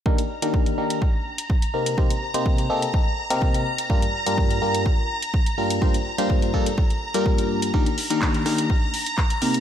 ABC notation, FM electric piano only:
X:1
M:4/4
L:1/16
Q:1/4=125
K:Eblyd
V:1 name="FM electric piano"
[E,B,DEGB] z2 [E,B,DEGB]3 [E,B,DEGB]2 z6 [C,B,CEGB]2 | [C,B,CEGc] z2 [C,B,CEGc]3 [C,B,CEGA] z4 [C,B,CEGB]3 z2 | [G,,B,DFGB] z2 [G,,B,DFGB]3 [G,,B,DFGB]2 z6 [G,,B,DFGB]2 | [G,,B,DFGc] z2 [G,,B,DFGc]3 [G,,B,DFGA] z4 [G,,B,DFGB]4- [G,,B,DFGB] |
[E,B,DEGB] z2 [E,B,DEGB]3 [E,B,DEGB]2 z6 [C,B,CEGB]2 |]